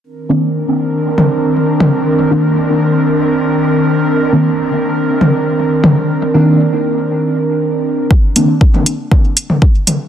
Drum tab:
HH |----------------|----------------|----------------|----------------|
T1 |---------o----o-|----------------|---------o----o-|----------------|
BD |----------------|----------------|----------------|----------------|

HH |--x---x---x---x-|
T1 |--o--o--o--o--o-|
BD |o---o---o---o---|